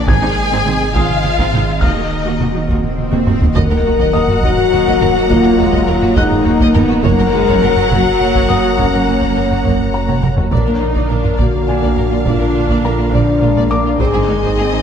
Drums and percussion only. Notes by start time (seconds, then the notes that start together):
0.08 taiko
0.66 taiko mid
0.95 taiko
1.09 taiko mid
1.24 taiko mid
1.38 taiko
1.53 taiko mid
1.82 taiko
2.40 taiko mid
2.69 taiko
2.84 taiko mid
2.98 taiko mid
3.12 taiko mid
3.27 taiko low-mid
3.42 taiko low
3.56 taiko
4.00 taiko
4.28 taiko low-mid
4.43 taiko
4.58 taiko low-mid
4.87 taiko
5.01 taiko low-mid
5.30 taiko
5.73 taiko
6.02 taiko low-mid
6.17 taiko
6.31 taiko low-mid
6.60 taiko
6.75 taiko low-mid
7.04 taiko
7.47 taiko
7.77 taiko low-mid
7.91 taiko
8.05 taiko low-mid
8.34 taiko
8.49 taiko low-mid
8.78 taiko
9.22 taiko
9.51 taiko low-mid
9.65 taiko
9.80 taiko low-mid
10.09 taiko mid
10.23 taiko mid
10.38 taiko low
10.52 taiko
10.96 taiko
11.24 taiko low-mid
11.39 taiko
11.54 taiko low-mid
11.82 taiko
11.97 taiko low-mid
12.26 taiko
12.69 taiko
13.13 taiko
13.56 taiko
14.00 taiko
14.43 taiko